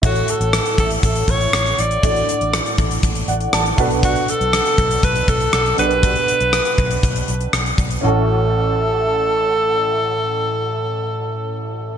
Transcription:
<<
  \new Staff \with { instrumentName = "Alto saxophone" } { \time 4/4 \key a \mixolydian \tempo 4 = 120 fis'8 a'4 a'8 a'8 cis''4 d''8~ | d''4. r2 r8 | fis'8 a'4. b'8 a'8 a'8 b'8~ | b'2. r4 |
a'1~ | a'1 | }
  \new Staff \with { instrumentName = "Grand piano" } { \time 4/4 \key a \mixolydian << { r1 | r2 r8 <d'' fis''>8 <fis'' a''>4 | r1 | r1 |
r1 | r1 | } \\ { <e' fis' a' cis''>1 | <d' fis' a' d''>2.~ <d' fis' a' d''>8 <d' fis' a' b'>8~ | <d' fis' a' b'>2.~ <d' fis' a' b'>8 <d' fis' g' bes' b'>8~ | <d' fis' g' bes' b'>2.~ <d' fis' g' bes' b'>8 r8 |
<cis' e' fis' a'>1~ | <cis' e' fis' a'>1 | } >> }
  \new Staff \with { instrumentName = "Grand piano" } { \clef bass \time 4/4 \key a \mixolydian a,4. r2 r8 | a,4. r2 b,8~ | b,4 r2 r8 b,8~ | b,4 r2. |
a,,1~ | a,,1 | }
  \new Staff \with { instrumentName = "Fingered electric bass" } { \clef bass \time 4/4 \key a \mixolydian a,,8 r16 a,,8 r16 a,,8 a,,8 a,,8 a,,8 a,,8 | a,,8 r16 a,,8 r16 a,,8 a,,8 a,,8 a,,8 b,,8~ | b,,8 r16 b,,8 r16 b,,8 b,,8 b,,8 b,,8 b,,8~ | b,,8 r16 b,,8 r16 b,,8 b,,8 b,,8 b,,8 b,,8 |
a,,1~ | a,,1 | }
  \new DrumStaff \with { instrumentName = "Drums" } \drummode { \time 4/4 <hh bd>16 hh16 hh16 hh16 <hh ss>16 hh16 <hh bd>16 hh16 <hh bd>16 hh16 <hh bd>16 hh16 <hh ss>16 hh16 hh16 hh16 | <hh bd>16 hh16 hh16 hh16 <hh ss>16 hh16 <hh bd>16 hh16 <hh bd>16 hh16 hh16 hh16 <hh ss>16 hh16 <hh bd>16 hh16 | <hh bd>16 hh16 hh16 hh16 <hh ss>16 hh16 <hh bd>16 hh16 <hh bd>16 hh16 <hh bd>16 hh16 <hh ss>16 hh16 hh16 hh16 | <hh bd>16 hh16 hh16 hh16 <hh ss>16 hh16 <hh bd>16 hh16 <hh bd>16 hh16 hh16 hh16 <hh ss>16 hh16 <hh bd>16 hh16 |
r4 r4 r4 r4 | r4 r4 r4 r4 | }
>>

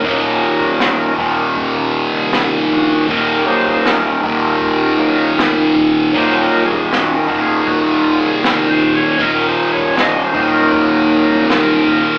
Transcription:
<<
  \new Staff \with { instrumentName = "Tonewheel organ" } { \time 4/4 \key ees \dorian \tempo 4 = 79 bes'4. r2 ges'8 | bes'8 c''8 bes'2~ bes'8 r8 | \tuplet 3/2 { c''8 bes'8 aes'8 ges'8 bes'8 aes'8 ges'8 f'8 aes'8 bes'8 c''8 des''8 } | \tuplet 3/2 { bes'8 c''8 des''8 ees''8 c''8 bes'8~ } bes'2 | }
  \new Staff \with { instrumentName = "Tonewheel organ" } { \time 4/4 \key ees \dorian <ges bes ees'>4. r2 r8 | r8 <ges bes ees'>8 r4. <ges bes ees'>8 r4 | <ges bes ees'>8 r2. r8 | r4. <ges bes ees'>4. r4 | }
  \new Staff \with { instrumentName = "Distorted electric guitar" } { \clef bass \time 4/4 \key ees \dorian <ees, bes, ees>4. <ees, bes, ees>2~ <ees, bes, ees>8 | <ees, bes, ees>4. <ees, bes, ees>2~ <ees, bes, ees>8 | <ees, bes, ees>4. <ees, bes, ees>2~ <ees, bes, ees>8 | <ees, bes, ees>4. <ees, bes, ees>2~ <ees, bes, ees>8 | }
  \new Staff \with { instrumentName = "Picked electric bass" } { \clef bass \time 4/4 \key ees \dorian ees,,8 r16 ges,,8. ees,,8 ees,,8. c,8. bes,,16 r16 | ees,,8 r16 ges,,8. ees,,8 ees,,8 ges,,8 f,,8 ees,,8 | ees,,8 r16 ges,,8. ees,,8 ees,,8. c,8. bes,,16 r16 | ees,,8 r16 ges,,8. ees,,8 ees,,8. c,8. bes,,16 r16 | }
  \new DrumStaff \with { instrumentName = "Drums" } \drummode { \time 4/4 <hho bd>8. bd16 <hho sn>8 bd8 <hho bd>4 <hho sn>8 bd8 | <hho bd>8. bd16 <hho sn>8 bd8 <hho bd>4 <hho sn>8 bd8 | <hho bd>8. bd16 <hho sn>8 bd8 <hho bd>4 <hho sn>8 bd8 | <hho bd>8. bd16 <hho sn>8 bd8 <hho bd>4 <hho sn>8 bd8 | }
>>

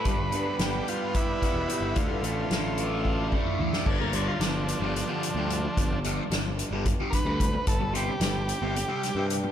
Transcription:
<<
  \new Staff \with { instrumentName = "Harmonium" } { \time 7/8 \key g \mixolydian \tempo 4 = 110 <g' b' d''>2.~ <g' b' d''>8 | <d'' e''>2.~ <d'' e''>8 | r2. r8 | r2. r8 |
r2. r8 | }
  \new Staff \with { instrumentName = "Transistor combo organ" } { \time 7/8 \key g \mixolydian b'4 g'8 f'8 e'4. | f'2~ f'8 r4 | d'16 bes16 d'16 f'16 <f d'>2~ <f d'>8~ | <f d'>8 r2 <bes' b'>4 |
a'8 g'8 g'2 r8 | }
  \new Staff \with { instrumentName = "Distorted electric guitar" } { \clef bass \time 7/8 \key g \mixolydian g,8 b8 d'8 g'8 d'8 b8 g'8 | d8 a8 d'8 e'8 d'8 a8 e'8 | r8 <g, d g>16 r4 <g, d g>16 r16 <g, d g>16 r16 <g, d g>16 r8 | r8 <g, d g>16 r4 <g, d g>16 r16 <g, d g>16 r16 <g, d g>16 r8 |
r8 <c g c'>16 r4 <c g c'>16 r16 <c g c'>16 r16 <c g c'>16 r8 | }
  \new Staff \with { instrumentName = "Picked electric bass" } { \clef bass \time 7/8 \key g \mixolydian g,,16 g,,16 g,16 r16 g,,8 r4 r16 e,,16 r16 g,,16 | d,16 g,16 a,,8 a,,2 r8 | g,,4 g,,8. g,,8 r8 d,8. | g,,4 g,,8. g,,8 r8 d,8. |
g,,4 g,,8. g,,8 r8 g,8. | }
  \new DrumStaff \with { instrumentName = "Drums" } \drummode { \time 7/8 <hh bd>8 hh8 <hh sn>8 hh8 <hh bd>8 <hh bd sn>8 hh8 | <hh bd>8 hh8 <hh sn>8 hh8 bd8 bd16 toml16 tomfh16 sn16 | <cymc bd>8 hh8 <hh sn>8 hh8 <hh sn>8 hh8 hh8 | <hh bd>8 hh8 <hh sn>8 hh8 <hh bd>8 <hh bd sn>8 <hh bd>8 |
<hh bd>8 hh8 <hh sn>8 hh8 hh8 <hh sn>8 hh8 | }
>>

